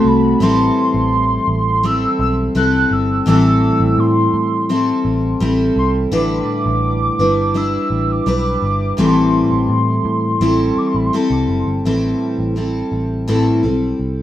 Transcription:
0.00 0.41 A3 medium
0.00 0.42 C4 medium
0.00 0.41 F#4 medium
0.00 0.43 A4 medium
0.05 0.33 C2 medium
0.05 0.44 B5 medium
0.40 0.69 A1 loud
0.40 1.83 A2 medium
0.40 3.26 E3 medium
0.40 1.83 G3 medium
0.40 1.83 C4 medium
0.40 1.84 E4 medium
0.40 1.84 A4 loud
0.40 1.87 C6 loud
0.94 1.37 A1 loud
1.48 2.05 A1 loud
1.83 2.54 G3 medium
1.83 2.54 C4 medium
1.83 2.56 E4 medium
1.83 2.56 A4 medium
1.83 2.20 E6 loud
2.19 2.48 B1 loud
2.19 2.35 E6 loud
2.55 2.84 C2 medium
2.55 3.27 G3 medium
2.55 3.27 C4 medium
2.55 3.28 E4 medium
2.55 3.27 A4 medium
2.55 2.94 F#6 loud
2.91 3.20 G1 loud
2.91 3.28 E6 loud
3.26 3.70 A1 medium
3.26 4.69 A2 medium
3.26 6.11 E3 medium
3.26 4.69 G3 medium
3.26 4.69 C4 medium
3.26 4.70 E4 medium
3.26 4.70 A4 medium
3.26 4.01 E6 loud
3.80 3.94 A1 medium
3.98 4.27 A2 loud
3.98 5.42 C6 loud
4.34 4.91 A2 medium
4.69 5.40 G3 medium
4.69 5.40 C4 medium
4.69 5.41 E4 medium
4.69 5.41 A4 medium
5.05 5.34 A1 loud
5.40 5.69 A1 medium
5.40 6.12 G3 medium
5.40 6.12 C4 medium
5.40 6.12 E4 medium
5.40 6.13 A4 medium
5.76 6.05 C2 loud
5.76 5.92 C6 medium
6.12 6.41 A1 loud
6.12 7.19 A2 medium
6.12 7.19 D3 medium
6.12 7.21 G3 medium
6.12 7.19 D4 medium
6.12 7.20 E4 loud
6.12 7.18 B4 medium
6.12 7.59 D6 loud
6.66 7.09 A1 loud
7.19 7.77 G1 medium
7.19 7.53 G3 soft
7.19 7.54 D4 medium
7.19 7.55 E4 medium
7.19 7.55 B4 medium
7.54 8.26 G3 medium
7.54 8.26 D4 medium
7.54 8.27 E4 medium
7.54 8.27 B4 medium
7.54 8.04 E6 loud
7.90 8.19 A1 medium
8.04 8.13 E6 medium
8.12 8.64 D6 loud
8.26 8.55 B1 loud
8.26 8.98 G3 medium
8.26 8.99 D4 medium
8.26 8.99 E4 medium
8.26 8.99 B4 medium
8.62 8.91 G1 loud
8.62 8.97 D6 loud
8.97 9.41 A1 medium
8.97 10.41 A2 medium
8.97 11.85 E3 medium
8.97 10.41 G3 medium
8.97 10.41 C4 medium
8.97 10.42 E4 medium
8.97 10.43 A4 medium
8.97 10.80 C6 medium
9.52 9.66 A1 medium
9.69 9.98 A2 medium
10.05 10.34 A2 loud
10.41 10.70 A1 loud
10.41 11.13 G3 medium
10.41 11.14 C4 medium
10.41 11.14 E4 medium
10.41 11.15 A4 medium
10.77 10.89 D6 medium
10.77 muted picked electric bass stroke medium
10.87 10.97 C6 medium
10.95 11.09 A1 medium
10.95 11.07 B5 medium
11.06 11.14 C6 medium
11.13 11.86 G3 medium
11.13 11.86 C4 medium
11.13 11.86 E4 medium
11.13 11.86 A4 medium
11.30 11.45 C2 medium
11.48 11.63 F#1 medium
11.66 11.81 G1 medium
11.85 12.14 A1 medium
11.85 12.57 A2 medium
11.85 12.57 E3 medium
11.85 12.55 G3 medium
11.85 12.56 C4 medium
11.85 12.56 E4 medium
11.85 12.58 A4 medium
12.38 12.81 A1 medium
12.56 13.28 G3 medium
12.56 13.28 C4 medium
12.56 13.28 E4 medium
12.56 13.29 A4 medium
12.92 13.49 A1 medium
13.28 13.64 A2 medium
13.28 13.64 E3 medium
13.28 13.64 G3 medium
13.28 13.63 C4 medium
13.28 13.62 E4 medium
13.28 13.62 A4 medium
13.63 13.92 B1 medium
13.63 14.22 G3 soft
13.63 14.22 C4 soft
13.63 14.22 E4 soft
13.63 14.22 A4 soft
13.99 14.22 C2 medium

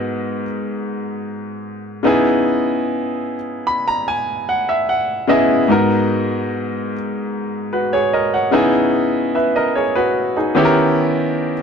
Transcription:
0.00 0.43 G#2 medium
0.00 0.43 B3 medium
0.00 0.44 D#4 medium
0.00 0.44 F#4 medium
0.00 0.45 A#4 medium
2.03 3.34 C#3 medium
2.03 3.34 B3 medium
2.03 3.35 D#4 medium
2.03 3.35 E4 medium
2.03 3.36 G#4 medium
3.67 3.86 B5 medium
3.88 4.06 A#5 medium
4.08 4.45 G#5 medium
4.49 4.67 F#5 medium
4.69 4.87 E5 medium
4.89 5.27 F#5 medium
5.27 5.59 C#3 medium
5.27 5.59 B3 medium
5.27 5.60 E4 medium
5.27 5.61 G#4 medium
5.27 5.60 D#5 medium
5.27 5.67 E5 medium
5.68 6.92 G#2 medium
5.68 6.92 B3 medium
5.68 6.93 D#4 medium
5.68 6.93 F#4 medium
5.68 6.94 A#4 medium
7.73 7.92 F#4 soft
7.73 7.92 B4 medium
7.93 8.12 G#4 soft
7.93 8.12 C#5 medium
8.13 8.32 A#4 soft
8.13 8.32 D#5 medium
8.34 8.72 C#5 soft
8.34 8.72 F#5 medium
8.51 9.82 C#3 medium
8.51 9.82 B3 medium
8.51 9.34 D#4 medium
8.51 9.34 E4 medium
8.51 9.35 G#4 medium
9.35 9.54 B4 soft
9.35 9.54 E5 soft
9.56 9.75 A#4 medium
9.56 9.74 D#5 medium
9.75 9.95 G#4 soft
9.75 9.94 C#5 medium
9.96 10.34 F#4 medium
9.96 10.34 B4 medium
10.36 10.75 D#4 soft
10.36 10.57 G#4 medium
10.55 11.52 D#3 medium
10.55 11.52 B3 medium
10.55 11.53 C#4 medium
10.55 11.53 E4 medium
10.55 11.53 G4 medium
10.55 10.63 G#4 medium
10.65 11.57 A#4 medium

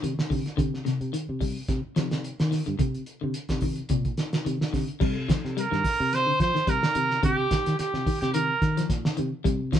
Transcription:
0.02 0.15 C3 medium
0.02 0.18 D#3 medium
0.02 closed hi-hat medium
0.18 muted fingered electric bass stroke soft
0.18 snare medium
0.30 0.42 C3 medium
0.30 0.46 D3 medium
0.30 kick medium
0.30 open hi-hat medium
0.46 snare soft
0.46 closed hi-hat soft
0.57 0.79 C3 medium
0.57 0.73 D3 loud
0.57 kick medium
0.57 closed hi-hat medium
0.74 snare soft
0.85 1.01 C3 medium
0.85 snare soft
0.85 closed hi-hat soft
1.01 1.11 C3 medium
1.01 closed hi-hat soft
1.13 1.29 D#3 medium
1.13 closed hi-hat medium
1.29 1.60 C3 medium
1.41 1.57 G3 medium
1.41 kick medium
1.41 open hi-hat medium
1.68 1.80 C3 medium
1.68 kick medium
1.68 snare soft
1.68 closed hi-hat medium
1.85 muted fingered electric bass stroke soft
1.96 2.30 C3 medium
1.96 2.12 F3 medium
1.96 snare medium
1.96 closed hi-hat soft
2.11 snare medium
2.11 closed hi-hat soft
2.24 closed hi-hat medium
2.39 2.61 D#3 medium
2.39 snare medium
2.39 closed hi-hat soft
2.51 2.60 D#3 medium
2.51 snare soft
2.51 open hi-hat medium
2.66 2.77 G2 medium
2.66 2.74 D3 medium
2.66 closed hi-hat soft
2.79 2.95 C3 medium
2.79 3.01 C3 medium
2.79 kick medium
2.79 closed hi-hat medium
2.95 closed hi-hat soft
3.06 closed hi-hat medium
3.21 3.33 C3 medium
3.21 3.37 D3 medium
3.34 closed hi-hat medium
3.49 3.81 C3 medium
3.49 kick medium
3.49 snare medium
3.49 closed hi-hat soft
3.61 3.78 D#3 medium
3.61 kick medium
3.61 open hi-hat medium
3.76 closed hi-hat soft
3.89 4.11 A#2 medium
3.89 4.06 C3 medium
3.89 kick medium
3.89 closed hi-hat medium
4.05 kick medium
4.05 closed hi-hat soft
4.17 snare medium
4.17 closed hi-hat soft
4.33 snare medium
4.33 closed hi-hat soft
4.45 4.58 C3 medium
4.45 4.61 D#3 medium
4.45 closed hi-hat medium
4.61 muted fingered electric bass stroke soft
4.61 snare medium
4.73 4.85 C3 medium
4.73 4.89 D3 medium
4.73 kick medium
4.73 snare soft
4.73 open hi-hat medium
4.88 closed hi-hat soft
5.00 5.34 C3 medium
5.00 5.16 G3 loud
5.00 kick loud
5.00 crash medium
5.29 5.44 F3 medium
5.29 kick medium
5.29 snare medium
5.29 closed hi-hat medium
5.45 5.65 C3 medium
5.45 snare soft
5.57 5.65 G3 medium
5.57 6.16 A#4 medium
5.57 closed hi-hat medium
5.71 5.82 G2 medium
5.71 5.87 D#3 medium
5.71 snare soft
5.84 kick medium
5.84 snare soft
5.84 open hi-hat medium
6.00 6.31 C3 loud
6.13 6.41 C5 loud
6.13 snare soft
6.13 closed hi-hat medium
6.26 6.42 D3 medium
6.40 6.51 F3 medium
6.40 6.71 C5 loud
6.40 kick medium
6.40 snare soft
6.40 closed hi-hat soft
6.55 6.62 D#3 medium
6.55 snare soft
6.67 6.79 C3 medium
6.67 6.83 G3 medium
6.67 7.24 A#4 loud
6.67 kick medium
6.67 snare soft
6.67 closed hi-hat medium
6.83 snare medium
6.95 7.17 C3 medium
6.95 7.11 D#3 medium
6.95 closed hi-hat medium
7.11 snare soft
7.23 7.44 C3 loud
7.23 7.39 D3 medium
7.23 7.75 G4 loud
7.23 kick medium
7.23 closed hi-hat medium
7.51 kick medium
7.51 snare medium
7.51 closed hi-hat medium
7.66 7.76 D#3 medium
7.66 snare soft
7.66 closed hi-hat soft
7.79 8.19 G4 medium
7.79 muted fingered electric bass stroke soft
7.79 snare soft
7.79 closed hi-hat medium
7.94 8.03 C3 medium
7.94 snare soft
8.06 8.22 D#3 medium
8.06 kick medium
8.06 open hi-hat medium
8.21 8.53 C3 loud
8.21 8.33 G4 medium
8.21 snare soft
8.21 closed hi-hat soft
8.34 8.50 D#3 medium
8.34 8.86 A#4 medium
8.34 closed hi-hat medium
8.62 8.83 D#3 medium
8.62 kick medium
8.62 snare soft
8.62 closed hi-hat soft
8.77 8.93 F3 medium
8.77 snare soft
8.77 closed hi-hat medium
8.89 9.01 A#2 medium
8.89 kick medium
8.89 snare soft
8.89 closed hi-hat medium
9.05 muted fingered electric bass stroke soft
9.05 snare medium
9.17 9.30 C3 medium
9.17 9.33 D#3 medium
9.17 closed hi-hat medium
9.44 9.77 C3 loud
9.44 9.60 G3 loud
9.44 kick medium
9.44 closed hi-hat medium
9.72 9.80 F3 medium
9.72 kick medium
9.72 snare medium
9.72 closed hi-hat medium

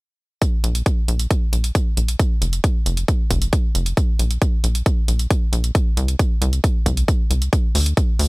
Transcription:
0.42 kick loud
0.42 closed hi-hat medium
0.64 0.83 A#1 medium
0.64 closed hi-hat medium
0.75 closed hi-hat medium
0.86 kick loud
0.86 closed hi-hat medium
1.08 1.27 A#1 medium
1.08 closed hi-hat medium
1.19 closed hi-hat medium
1.31 kick loud
1.31 closed hi-hat medium
1.53 1.71 A#1 loud
1.53 closed hi-hat medium
1.64 closed hi-hat medium
1.75 kick loud
1.75 closed hi-hat medium
1.97 2.16 A#1 medium
1.97 closed hi-hat medium
2.08 closed hi-hat medium
2.19 kick loud
2.19 closed hi-hat medium
2.42 2.60 F1 medium
2.42 closed hi-hat medium
2.53 closed hi-hat medium
2.64 kick loud
2.64 closed hi-hat medium
2.86 3.05 F1 medium
2.86 closed hi-hat medium
2.97 closed hi-hat medium
3.08 kick loud
3.08 closed hi-hat medium
3.31 3.49 F1 medium
3.31 kick medium
3.31 closed hi-hat medium
3.42 closed hi-hat medium
3.53 kick loud
3.53 closed hi-hat medium
3.75 3.94 F1 medium
3.75 closed hi-hat medium
3.86 closed hi-hat medium
3.97 kick loud
3.97 closed hi-hat medium
4.19 4.38 A#1 medium
4.19 closed hi-hat medium
4.31 closed hi-hat medium
4.42 kick loud
4.42 closed hi-hat medium
4.64 4.83 A#1 medium
4.64 closed hi-hat medium
4.75 closed hi-hat medium
4.86 kick loud
4.86 closed hi-hat medium
5.08 5.27 A#1 medium
5.08 closed hi-hat medium
5.19 closed hi-hat medium
5.31 kick loud
5.31 closed hi-hat medium
5.53 5.71 A#1 medium
5.53 closed hi-hat medium
5.64 closed hi-hat medium
5.75 kick loud
5.75 closed hi-hat medium
5.97 6.16 C2 medium
5.97 closed hi-hat medium
6.08 closed hi-hat medium
6.19 kick loud
6.19 closed hi-hat medium
6.42 6.60 C2 medium
6.42 closed hi-hat medium
6.53 closed hi-hat medium
6.64 kick loud
6.64 closed hi-hat medium
6.86 7.05 C2 medium
6.86 kick medium
6.86 closed hi-hat medium
6.97 closed hi-hat medium
7.08 kick loud
7.08 closed hi-hat medium
7.31 7.49 C2 medium
7.31 closed hi-hat medium
7.42 closed hi-hat medium
7.53 kick loud
7.53 closed hi-hat medium
7.75 7.94 D2 medium
7.75 open hi-hat loud
7.86 closed hi-hat medium
7.97 kick loud
7.97 closed hi-hat medium
8.19 8.28 D2 loud
8.19 open hi-hat loud

